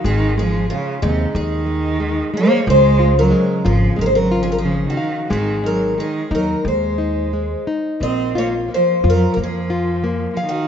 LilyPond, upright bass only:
\new Staff \with { instrumentName = "Upright bass" } { \clef bass \time 4/4 \key aes \mixolydian \tempo 4 = 90 aes,,4. ees,8 ees,2 | des,4. aes,,8 aes,,2 | aes,,4. ees,8 ees,2 | bes,,4. f,8 f,2 | }